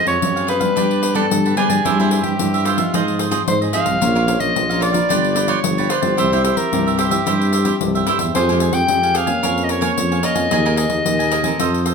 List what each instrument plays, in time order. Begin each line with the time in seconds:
Already playing: nylon-string guitar F2 F3 G#3 C4, cavaquinho F4 G#4 C5 F5
0.06 tuba F2, soprano saxophone C#5, pandeiro
0.22 tuba F#2, nylon-string guitar C3 F3 G#3 C4, pandeiro
0.36 cavaquinho G#4 C5 F5, pandeiro
0.47 cavaquinho F4 G#4 C5 F5, soprano saxophone B4, pandeiro
0.60 nylon-string guitar G3 B3 D4, cavaquinho G#4 C5 F5, pandeiro
0.76 tuba G2, nylon-string guitar G2, cavaquinho D4 G4 B4 D5, pandeiro
0.91 pandeiro
1.02 cavaquinho D4 G4 B4 D5, pandeiro
1.14 nylon-string guitar G3 B3 D4, cavaquinho D4 G4 B4 D5, soprano saxophone A4, pandeiro
1.30 tuba G2, nylon-string guitar D3, pandeiro
1.45 cavaquinho G4 B4 D5, pandeiro
1.56 nylon-string guitar G3 B3 D4, cavaquinho D4 G4 B4 D5, soprano saxophone G#4, pandeiro
1.69 tuba G2, cavaquinho G4 B4 D5, pandeiro
1.84 nylon-string guitar G2 G3 C4 E4, tuba G2, cavaquinho E4 G4 C5 E5, pandeiro
1.99 nylon-string guitar G3 C4 E4, cavaquinho E4 G4 C5 E5, pandeiro
2.11 cavaquinho E4 G4 C5 E5, pandeiro
2.23 tuba G2, soprano saxophone G4, pandeiro
2.39 nylon-string guitar G2 G3 C4 E4, tuba G2, pandeiro
2.54 cavaquinho G4 C5 E5, pandeiro
2.65 cavaquinho E4 G4 C5 E5, soprano saxophone F4, pandeiro
2.77 nylon-string guitar F3 C4 D#4, cavaquinho G4 C5 E5, pandeiro
2.93 nylon-string guitar G#2, tuba G#2, cavaquinho F4 G#4 C5 D#5, pandeiro
3.08 pandeiro
3.19 cavaquinho F4 G#4 C5 D#5, pandeiro
3.31 nylon-string guitar F3 C4 D#4, cavaquinho F4 G#4 C5 D#5, pandeiro
3.47 tuba G#2, nylon-string guitar G#2, soprano saxophone C5, pandeiro
3.61 cavaquinho G#4 C5 D#5, pandeiro
3.73 nylon-string guitar F3 C4 D#4, cavaquinho F4 G#4 C5 D#5, soprano saxophone F5, pandeiro
3.86 tuba C2, cavaquinho G#4 C5 D#5, pandeiro
4.01 tuba A#1, nylon-string guitar A#3 C#4 F4 C5, cavaquinho F4 A#4 C#5 F5, pandeiro
4.15 cavaquinho F4 A#4 C#5 F5, pandeiro
4.27 nylon-string guitar C#4 F4 C5, cavaquinho F4 A#4 C#5 F5, pandeiro
4.40 tuba A#1, soprano saxophone D#5, pandeiro
4.56 tuba A#1, nylon-string guitar F3, pandeiro
4.69 nylon-string guitar C#4 F4 C5, cavaquinho A#4 C#5 F5, pandeiro
4.81 cavaquinho F4 A#4 C#5 F5, soprano saxophone D5, pandeiro
4.93 nylon-string guitar D4 F4 B4, cavaquinho A#4 C#5 F5, pandeiro
5.09 tuba G1, nylon-string guitar G3, cavaquinho F4 G4 B4 D5, pandeiro
5.25 pandeiro
5.35 nylon-string guitar D4 F4 B4, cavaquinho F4 G4 B4 D5, pandeiro
5.48 cavaquinho F4 G4 B4 D5, soprano saxophone C#5, pandeiro
5.64 tuba G1, nylon-string guitar D3, pandeiro
5.78 nylon-string guitar D4 F4 B4, cavaquinho G4 B4 D5, pandeiro
5.89 cavaquinho F4 G4 B4 D5, soprano saxophone C5, pandeiro
6.01 tuba G1, nylon-string guitar C4 E4 G4, cavaquinho G4 B4 D5, pandeiro
6.17 tuba C2, nylon-string guitar C3, cavaquinho E4 G4 C5 E5, pandeiro
6.32 nylon-string guitar C4 E4 G4, cavaquinho E4 G4 C5 E5, pandeiro
6.44 cavaquinho E4 G4 C5 E5, pandeiro
6.57 soprano saxophone A#4, pandeiro
6.72 tuba C2, nylon-string guitar G2 C4 E4 G4, pandeiro
6.86 cavaquinho G4 C5 E5, pandeiro
6.97 cavaquinho E4 G4 C5 E5, soprano saxophone G4, pandeiro
7.10 nylon-string guitar C4 E4 G4, cavaquinho G4 C5 E5, pandeiro
7.26 tuba G2, nylon-string guitar C3 C4 E4 G4, cavaquinho E4 G4 C5 E5, pandeiro
7.41 pandeiro
7.52 cavaquinho E4 G4 C5 E5, pandeiro
7.65 nylon-string guitar C4 E4 G4, cavaquinho E4 G4 C5 E5, pandeiro
7.81 tuba C2, nylon-string guitar G2, pandeiro
7.95 cavaquinho G4 C5 E5, pandeiro
8.07 nylon-string guitar C4 E4 G4, cavaquinho E4 G4 C5 E5, pandeiro
8.19 tuba E2, cavaquinho G4 C5 E5, pandeiro
8.35 tuba F2, nylon-string guitar F3 G#3 C4 G4, cavaquinho G4 G#4 F5 G#5, soprano saxophone C5, pandeiro
8.49 nylon-string guitar G#3 C4 G4, cavaquinho G4 G#4 F5 G#5, pandeiro
8.60 cavaquinho G#4 F5 G#5, pandeiro
8.73 tuba F2, soprano saxophone G5, pandeiro
8.88 tuba F2, nylon-string guitar C3 G#3 C4 G4, pandeiro
9.03 cavaquinho G4 F5 G#5, pandeiro
9.14 cavaquinho G4 G#4 F5 G#5, soprano saxophone F5, pandeiro
9.27 nylon-string guitar A#3 C#4 G#4, cavaquinho G4 F5 G#5, pandeiro
9.43 tuba F2, nylon-string guitar F3, cavaquinho A#4 C#5 F5 G#5, pandeiro
9.58 pandeiro
9.64 soprano saxophone D#5
9.69 cavaquinho A#4 C#5 F5 G#5, soprano saxophone C#5, pandeiro
9.81 nylon-string guitar A#3 C#4 G#4, cavaquinho A#4 C#5 F5 G#5, pandeiro
9.97 tuba F2, nylon-string guitar F3, pandeiro
10.12 cavaquinho C#5 F5 G#5, pandeiro
10.23 nylon-string guitar A#3 C#4 G#4, cavaquinho A#4 C#5 F5 G#5, soprano saxophone D#5, pandeiro
10.35 tuba F2, cavaquinho C#5 F5 G#5, pandeiro
10.51 tuba D#2, nylon-string guitar D#3 A#3 D#4 G#4, cavaquinho G#4 A#4 D#5 G#5, pandeiro
10.65 nylon-string guitar A#3 D#4 G#4, cavaquinho G#4 A#4 D#5 G#5, pandeiro
10.76 cavaquinho G#4 A#4 D#5 G#5, soprano saxophone D#5, pandeiro
10.89 tuba D#2, pandeiro
11.05 tuba D#2, nylon-string guitar A#2 A#3 D#4 G#4, pandeiro
11.19 cavaquinho A#4 D#5 G#5, pandeiro
11.31 cavaquinho G#4 A#4 D#5 G#5, pandeiro
11.44 nylon-string guitar C4 D#4 A4, cavaquinho A#4 D#5 G#5, pandeiro
11.59 tuba F2, nylon-string guitar F3, cavaquinho F4 A4 C5 D#5, pandeiro
11.74 pandeiro
11.85 cavaquinho F4 A4 C5 D#5, pandeiro